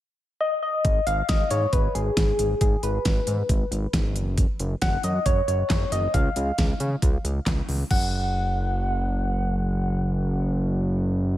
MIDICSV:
0, 0, Header, 1, 4, 480
1, 0, Start_track
1, 0, Tempo, 441176
1, 922, Time_signature, 4, 2, 24, 8
1, 12375, End_track
2, 0, Start_track
2, 0, Title_t, "Soft synth lead"
2, 0, Program_c, 0, 80
2, 441, Note_on_c, 0, 75, 100
2, 664, Note_off_c, 0, 75, 0
2, 681, Note_on_c, 0, 75, 104
2, 1160, Note_on_c, 0, 77, 108
2, 1177, Note_off_c, 0, 75, 0
2, 1399, Note_on_c, 0, 75, 105
2, 1416, Note_off_c, 0, 77, 0
2, 1640, Note_on_c, 0, 73, 97
2, 1656, Note_off_c, 0, 75, 0
2, 1875, Note_off_c, 0, 73, 0
2, 1881, Note_on_c, 0, 71, 96
2, 2119, Note_on_c, 0, 68, 97
2, 2135, Note_off_c, 0, 71, 0
2, 2835, Note_off_c, 0, 68, 0
2, 2842, Note_on_c, 0, 68, 89
2, 3082, Note_on_c, 0, 71, 86
2, 3099, Note_off_c, 0, 68, 0
2, 4042, Note_off_c, 0, 71, 0
2, 5241, Note_on_c, 0, 78, 109
2, 5482, Note_on_c, 0, 75, 98
2, 5498, Note_off_c, 0, 78, 0
2, 5721, Note_on_c, 0, 73, 97
2, 5737, Note_off_c, 0, 75, 0
2, 5953, Note_off_c, 0, 73, 0
2, 5960, Note_on_c, 0, 73, 96
2, 6441, Note_on_c, 0, 75, 89
2, 6458, Note_off_c, 0, 73, 0
2, 6680, Note_on_c, 0, 77, 95
2, 6697, Note_off_c, 0, 75, 0
2, 7161, Note_off_c, 0, 77, 0
2, 8602, Note_on_c, 0, 78, 98
2, 12375, Note_off_c, 0, 78, 0
2, 12375, End_track
3, 0, Start_track
3, 0, Title_t, "Analog synth bass"
3, 0, Program_c, 1, 38
3, 921, Note_on_c, 1, 32, 106
3, 1089, Note_off_c, 1, 32, 0
3, 1162, Note_on_c, 1, 32, 103
3, 1330, Note_off_c, 1, 32, 0
3, 1404, Note_on_c, 1, 32, 105
3, 1571, Note_off_c, 1, 32, 0
3, 1642, Note_on_c, 1, 44, 97
3, 1810, Note_off_c, 1, 44, 0
3, 1881, Note_on_c, 1, 32, 102
3, 2049, Note_off_c, 1, 32, 0
3, 2123, Note_on_c, 1, 32, 95
3, 2290, Note_off_c, 1, 32, 0
3, 2360, Note_on_c, 1, 32, 112
3, 2529, Note_off_c, 1, 32, 0
3, 2603, Note_on_c, 1, 32, 96
3, 2770, Note_off_c, 1, 32, 0
3, 2840, Note_on_c, 1, 32, 106
3, 3008, Note_off_c, 1, 32, 0
3, 3082, Note_on_c, 1, 32, 96
3, 3250, Note_off_c, 1, 32, 0
3, 3323, Note_on_c, 1, 32, 107
3, 3490, Note_off_c, 1, 32, 0
3, 3562, Note_on_c, 1, 44, 97
3, 3730, Note_off_c, 1, 44, 0
3, 3800, Note_on_c, 1, 32, 106
3, 3969, Note_off_c, 1, 32, 0
3, 4041, Note_on_c, 1, 32, 100
3, 4209, Note_off_c, 1, 32, 0
3, 4281, Note_on_c, 1, 32, 106
3, 4521, Note_on_c, 1, 30, 102
3, 4538, Note_off_c, 1, 32, 0
3, 4857, Note_off_c, 1, 30, 0
3, 5002, Note_on_c, 1, 30, 98
3, 5170, Note_off_c, 1, 30, 0
3, 5244, Note_on_c, 1, 30, 103
3, 5411, Note_off_c, 1, 30, 0
3, 5482, Note_on_c, 1, 42, 88
3, 5649, Note_off_c, 1, 42, 0
3, 5721, Note_on_c, 1, 30, 108
3, 5889, Note_off_c, 1, 30, 0
3, 5963, Note_on_c, 1, 30, 99
3, 6130, Note_off_c, 1, 30, 0
3, 6200, Note_on_c, 1, 30, 103
3, 6368, Note_off_c, 1, 30, 0
3, 6442, Note_on_c, 1, 30, 106
3, 6610, Note_off_c, 1, 30, 0
3, 6680, Note_on_c, 1, 37, 114
3, 6849, Note_off_c, 1, 37, 0
3, 6923, Note_on_c, 1, 37, 99
3, 7090, Note_off_c, 1, 37, 0
3, 7164, Note_on_c, 1, 37, 103
3, 7331, Note_off_c, 1, 37, 0
3, 7402, Note_on_c, 1, 49, 98
3, 7570, Note_off_c, 1, 49, 0
3, 7641, Note_on_c, 1, 37, 106
3, 7809, Note_off_c, 1, 37, 0
3, 7883, Note_on_c, 1, 37, 101
3, 8050, Note_off_c, 1, 37, 0
3, 8121, Note_on_c, 1, 37, 108
3, 8289, Note_off_c, 1, 37, 0
3, 8362, Note_on_c, 1, 37, 105
3, 8530, Note_off_c, 1, 37, 0
3, 8602, Note_on_c, 1, 30, 98
3, 12375, Note_off_c, 1, 30, 0
3, 12375, End_track
4, 0, Start_track
4, 0, Title_t, "Drums"
4, 921, Note_on_c, 9, 42, 72
4, 922, Note_on_c, 9, 36, 115
4, 1029, Note_off_c, 9, 42, 0
4, 1030, Note_off_c, 9, 36, 0
4, 1161, Note_on_c, 9, 42, 67
4, 1270, Note_off_c, 9, 42, 0
4, 1400, Note_on_c, 9, 42, 73
4, 1404, Note_on_c, 9, 36, 113
4, 1404, Note_on_c, 9, 38, 103
4, 1508, Note_off_c, 9, 42, 0
4, 1513, Note_off_c, 9, 36, 0
4, 1513, Note_off_c, 9, 38, 0
4, 1638, Note_on_c, 9, 42, 72
4, 1746, Note_off_c, 9, 42, 0
4, 1879, Note_on_c, 9, 42, 70
4, 1881, Note_on_c, 9, 36, 118
4, 1988, Note_off_c, 9, 42, 0
4, 1989, Note_off_c, 9, 36, 0
4, 2123, Note_on_c, 9, 42, 62
4, 2232, Note_off_c, 9, 42, 0
4, 2360, Note_on_c, 9, 36, 110
4, 2360, Note_on_c, 9, 38, 113
4, 2362, Note_on_c, 9, 42, 71
4, 2469, Note_off_c, 9, 36, 0
4, 2469, Note_off_c, 9, 38, 0
4, 2470, Note_off_c, 9, 42, 0
4, 2600, Note_on_c, 9, 42, 70
4, 2708, Note_off_c, 9, 42, 0
4, 2838, Note_on_c, 9, 42, 73
4, 2840, Note_on_c, 9, 36, 112
4, 2947, Note_off_c, 9, 42, 0
4, 2949, Note_off_c, 9, 36, 0
4, 3079, Note_on_c, 9, 42, 69
4, 3188, Note_off_c, 9, 42, 0
4, 3319, Note_on_c, 9, 42, 73
4, 3323, Note_on_c, 9, 36, 114
4, 3324, Note_on_c, 9, 38, 102
4, 3428, Note_off_c, 9, 42, 0
4, 3432, Note_off_c, 9, 36, 0
4, 3432, Note_off_c, 9, 38, 0
4, 3557, Note_on_c, 9, 42, 72
4, 3666, Note_off_c, 9, 42, 0
4, 3800, Note_on_c, 9, 42, 73
4, 3801, Note_on_c, 9, 36, 119
4, 3909, Note_off_c, 9, 42, 0
4, 3910, Note_off_c, 9, 36, 0
4, 4045, Note_on_c, 9, 42, 62
4, 4154, Note_off_c, 9, 42, 0
4, 4280, Note_on_c, 9, 36, 109
4, 4282, Note_on_c, 9, 38, 112
4, 4284, Note_on_c, 9, 42, 75
4, 4389, Note_off_c, 9, 36, 0
4, 4391, Note_off_c, 9, 38, 0
4, 4392, Note_off_c, 9, 42, 0
4, 4522, Note_on_c, 9, 42, 72
4, 4631, Note_off_c, 9, 42, 0
4, 4760, Note_on_c, 9, 42, 75
4, 4761, Note_on_c, 9, 36, 117
4, 4869, Note_off_c, 9, 42, 0
4, 4870, Note_off_c, 9, 36, 0
4, 5000, Note_on_c, 9, 42, 70
4, 5108, Note_off_c, 9, 42, 0
4, 5239, Note_on_c, 9, 42, 72
4, 5243, Note_on_c, 9, 36, 114
4, 5243, Note_on_c, 9, 38, 105
4, 5348, Note_off_c, 9, 42, 0
4, 5352, Note_off_c, 9, 36, 0
4, 5352, Note_off_c, 9, 38, 0
4, 5478, Note_on_c, 9, 42, 73
4, 5586, Note_off_c, 9, 42, 0
4, 5720, Note_on_c, 9, 42, 71
4, 5721, Note_on_c, 9, 36, 118
4, 5829, Note_off_c, 9, 42, 0
4, 5830, Note_off_c, 9, 36, 0
4, 5964, Note_on_c, 9, 42, 64
4, 6073, Note_off_c, 9, 42, 0
4, 6200, Note_on_c, 9, 36, 113
4, 6202, Note_on_c, 9, 38, 113
4, 6202, Note_on_c, 9, 39, 92
4, 6203, Note_on_c, 9, 42, 74
4, 6309, Note_off_c, 9, 36, 0
4, 6310, Note_off_c, 9, 38, 0
4, 6310, Note_off_c, 9, 39, 0
4, 6312, Note_off_c, 9, 42, 0
4, 6441, Note_on_c, 9, 42, 73
4, 6550, Note_off_c, 9, 42, 0
4, 6680, Note_on_c, 9, 42, 71
4, 6681, Note_on_c, 9, 36, 117
4, 6789, Note_off_c, 9, 42, 0
4, 6790, Note_off_c, 9, 36, 0
4, 6920, Note_on_c, 9, 42, 72
4, 7029, Note_off_c, 9, 42, 0
4, 7160, Note_on_c, 9, 42, 71
4, 7164, Note_on_c, 9, 36, 118
4, 7164, Note_on_c, 9, 38, 107
4, 7269, Note_off_c, 9, 42, 0
4, 7273, Note_off_c, 9, 36, 0
4, 7273, Note_off_c, 9, 38, 0
4, 7399, Note_on_c, 9, 42, 71
4, 7508, Note_off_c, 9, 42, 0
4, 7641, Note_on_c, 9, 36, 119
4, 7642, Note_on_c, 9, 42, 72
4, 7750, Note_off_c, 9, 36, 0
4, 7750, Note_off_c, 9, 42, 0
4, 7885, Note_on_c, 9, 42, 65
4, 7994, Note_off_c, 9, 42, 0
4, 8121, Note_on_c, 9, 36, 108
4, 8123, Note_on_c, 9, 38, 114
4, 8123, Note_on_c, 9, 39, 93
4, 8124, Note_on_c, 9, 42, 75
4, 8229, Note_off_c, 9, 36, 0
4, 8231, Note_off_c, 9, 38, 0
4, 8231, Note_off_c, 9, 39, 0
4, 8233, Note_off_c, 9, 42, 0
4, 8362, Note_on_c, 9, 46, 73
4, 8471, Note_off_c, 9, 46, 0
4, 8602, Note_on_c, 9, 36, 111
4, 8602, Note_on_c, 9, 49, 90
4, 8711, Note_off_c, 9, 36, 0
4, 8711, Note_off_c, 9, 49, 0
4, 12375, End_track
0, 0, End_of_file